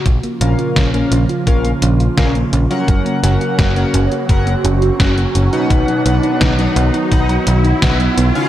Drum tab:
HH |xxxxxxxxxxxxxxxx|xxxxxxxxxxxxxxxx|xxxxxxxxxxxxxxxx|
SD |----o-------o---|--o-o-------o---|----o-------o---|
BD |o---o---o---o---|o---o---o---o---|o---o---o---o---|